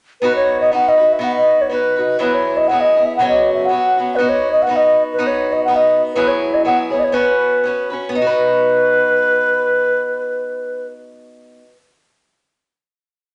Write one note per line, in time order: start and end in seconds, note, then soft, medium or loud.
0.21 0.71 B3 medium
0.21 0.71 D#4 medium
0.21 0.73 F#4 medium
0.21 0.33 B4 medium
0.21 0.74 B4 medium
0.36 0.58 C#5 medium
0.61 0.71 D#5 medium
0.72 0.98 B3 soft
0.72 0.98 D#4 medium
0.72 0.98 F#4 medium
0.72 0.96 B4 medium
0.72 0.90 F#5 medium
0.89 1.14 D#5 medium
0.97 1.19 D#4 soft
0.97 1.20 F#4 soft
0.97 1.20 B4 soft
1.13 1.25 E5 medium
1.19 1.69 B3 medium
1.19 1.70 D#4 medium
1.19 1.71 F#4 medium
1.19 1.72 B4 medium
1.24 1.35 F#5 medium
1.37 1.63 D#5 medium
1.61 1.71 C#5 medium
1.69 1.96 B3 soft
1.69 1.97 D#4 soft
1.69 1.97 F#4 medium
1.69 2.17 B4 medium
1.69 1.95 B4 medium
1.96 2.20 D#4 soft
1.96 2.20 F#4 soft
1.96 2.19 B4 soft
2.19 2.69 E3 medium
2.19 2.69 F#3 medium
2.19 2.71 B3 medium
2.19 2.70 E4 medium
2.19 2.70 G#4 medium
2.19 2.36 B4 medium
2.34 2.58 C#5 medium
2.57 2.69 D#5 medium
2.68 2.96 F#3 soft
2.68 2.97 B3 medium
2.68 2.82 F#5 medium
2.72 2.95 E4 medium
2.72 2.94 G#4 medium
2.81 3.07 D#5 medium
2.95 3.19 B3 soft
2.95 3.19 E4 soft
2.95 3.19 G#4 soft
3.05 3.16 E5 medium
3.16 3.69 F#2 medium
3.16 3.69 C#3 medium
3.16 3.69 F#3 medium
3.16 3.27 F#5 medium
3.20 3.70 B3 medium
3.20 3.69 C#4 medium
3.20 3.73 F#4 medium
3.28 3.53 D#5 medium
3.54 3.67 E5 medium
3.65 3.95 F#3 medium
3.65 4.17 F#5 medium
3.70 3.96 B3 soft
3.70 3.96 C#4 medium
3.70 3.96 F#4 medium
3.97 4.18 F#3 soft
3.97 4.17 B3 soft
3.97 4.20 C#4 soft
3.97 4.19 F#4 soft
4.16 4.67 B3 medium
4.16 4.68 D#4 medium
4.16 4.30 B4 medium
4.20 4.69 F#4 medium
4.20 4.70 B4 medium
4.29 4.52 C#5 medium
4.52 4.64 D#5 medium
4.62 4.78 F#5 medium
4.67 5.18 B3 soft
4.67 5.18 D#4 medium
4.67 5.19 F#4 medium
4.67 5.20 B4 soft
4.76 5.03 D#5 medium
5.13 5.28 B4 medium
5.18 5.67 B3 medium
5.18 5.67 D#4 medium
5.18 5.69 F#4 medium
5.18 5.69 B4 medium
5.27 5.54 C#5 medium
5.52 5.64 D#5 medium
5.64 6.15 B3 medium
5.64 5.77 F#5 medium
5.69 6.16 D#4 soft
5.69 6.17 F#4 medium
5.69 6.17 B4 medium
5.76 6.02 D#5 medium
6.14 6.65 E3 medium
6.14 6.64 F#3 medium
6.14 6.65 B3 medium
6.14 6.65 E4 medium
6.14 6.66 G#4 medium
6.14 6.30 B4 medium
6.28 6.56 C#5 medium
6.54 6.65 D#5 medium
6.65 6.91 F#3 soft
6.65 6.92 B3 medium
6.65 6.90 E4 medium
6.65 6.89 G#4 medium
6.65 6.78 F#5 medium
6.90 7.11 B3 soft
6.90 7.13 E4 soft
6.90 7.14 G#4 soft
6.90 7.01 C#5 medium
6.99 7.05 D#5 medium
7.04 7.15 C#5 medium
7.12 7.63 B3 medium
7.12 7.63 C#4 medium
7.12 7.66 F#4 medium
7.12 7.90 B4 medium
7.12 7.66 B4 medium
7.64 7.90 B3 soft
7.64 7.91 C#4 medium
7.64 7.90 F#4 soft
7.64 7.89 B4 medium
7.90 8.14 C#4 soft
7.90 8.14 F#4 soft
7.90 8.13 B4 soft
8.09 11.59 B3 medium
8.09 10.87 B4 medium
8.15 11.65 D#4 medium
8.22 11.72 F#4 medium
8.26 11.76 B4 medium